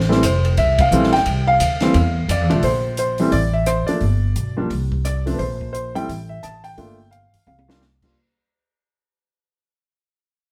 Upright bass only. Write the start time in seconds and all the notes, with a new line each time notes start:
Already playing: A1
0.23 F1
0.57 C2
0.91 A#1
1.26 C2
1.60 D2
1.95 E2
2.28 F2
2.41 E2
2.52 C2
2.63 A#1
3.32 A1
4.01 G1
4.36 B1
4.70 C2
5.39 A#1
6.09 A1
6.44 A1
6.78 G1
7.33 muted upright bass stroke
7.47 C2